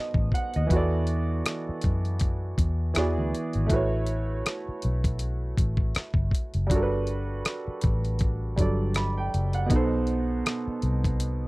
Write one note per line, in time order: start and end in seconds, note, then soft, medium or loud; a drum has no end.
0.00 0.65 B2 medium
0.00 0.66 B3 medium
0.00 0.67 D#4 medium
0.00 0.68 A4 medium
0.00 0.69 C5 medium
0.00 0.32 D#5 soft
0.14 0.31 A1 medium
0.14 kick medium
0.32 0.53 F#5 medium
0.32 kick medium
0.32 closed hi-hat soft
0.54 0.70 D#2 medium
0.54 0.91 D#5 medium
0.54 closed hi-hat soft
0.67 2.89 E3 medium
0.67 2.91 B3 medium
0.67 kick medium
0.71 1.41 E2 medium
0.71 2.92 F#4 medium
0.71 2.93 A4 medium
0.71 closed hi-hat medium
0.76 2.94 D5 medium
1.07 closed hi-hat medium
1.46 cross-stick loud
1.46 closed hi-hat medium
1.69 muted fingered electric bass stroke soft
1.81 2.55 F#2 medium
1.81 kick medium
1.81 closed hi-hat medium
2.05 closed hi-hat soft
2.19 kick medium
2.19 closed hi-hat medium
2.58 2.92 E2 medium
2.58 kick medium
2.58 closed hi-hat medium
2.94 3.18 E2 medium
2.94 3.69 E3 medium
2.94 3.70 B3 medium
2.94 3.69 F#4 medium
2.94 3.71 G#4 medium
2.94 cross-stick loud
2.94 closed hi-hat medium
2.99 3.72 D5 medium
3.18 3.32 D2 medium
3.35 closed hi-hat medium
3.53 3.69 G#1 medium
3.53 closed hi-hat soft
3.67 4.41 A1 medium
3.67 6.64 A3 medium
3.67 6.65 E4 medium
3.67 kick loud
3.67 closed hi-hat medium
3.71 6.67 F#4 medium
3.71 6.68 B4 medium
3.75 6.69 C#5 medium
4.06 closed hi-hat medium
4.46 cross-stick medium
4.46 closed hi-hat medium
4.69 muted fingered electric bass stroke soft
4.82 5.55 B1 medium
4.82 closed hi-hat medium
5.04 kick medium
5.04 closed hi-hat soft
5.19 closed hi-hat medium
5.57 5.92 A1 medium
5.57 kick medium
5.57 closed hi-hat medium
5.77 kick medium
5.95 cross-stick loud
5.95 closed hi-hat medium
6.14 6.30 G1 medium
6.14 kick medium
6.31 kick medium
6.31 closed hi-hat medium
6.54 6.71 F#1 medium
6.54 closed hi-hat soft
6.67 8.52 G3 medium
6.67 8.53 D4 medium
6.67 kick loud
6.71 7.41 G1 medium
6.71 8.54 F#4 medium
6.71 8.56 A4 medium
6.71 closed hi-hat medium
6.76 6.80 A#4 medium
6.83 8.60 B4 medium
7.07 closed hi-hat medium
7.45 cross-stick loud
7.45 closed hi-hat medium
7.68 muted fingered electric bass stroke soft
7.81 8.54 A1 medium
7.81 kick medium
7.81 closed hi-hat medium
8.05 closed hi-hat soft
8.19 kick medium
8.19 closed hi-hat medium
8.56 9.29 G1 medium
8.56 9.71 F#3 soft
8.56 9.69 G3 medium
8.56 9.70 D4 soft
8.56 9.71 A4 soft
8.56 kick medium
8.56 closed hi-hat medium
8.61 9.72 D5 medium
8.94 9.16 B5 medium
8.94 cross-stick medium
8.94 closed hi-hat medium
9.18 9.53 G5 medium
9.34 9.68 F#1 medium
9.34 closed hi-hat medium
9.53 9.90 F#5 medium
9.53 closed hi-hat soft
9.66 11.48 B2 medium
9.66 11.48 B3 medium
9.66 kick loud
9.70 10.41 B1 medium
9.70 11.48 D#4 medium
9.70 11.48 A4 medium
9.70 closed hi-hat medium
9.76 11.48 C5 medium
10.07 closed hi-hat medium
10.46 cross-stick loud
10.46 closed hi-hat medium
10.67 muted fingered electric bass stroke soft
10.82 11.48 C2 medium
10.82 closed hi-hat medium
11.04 kick medium
11.04 closed hi-hat soft
11.20 closed hi-hat medium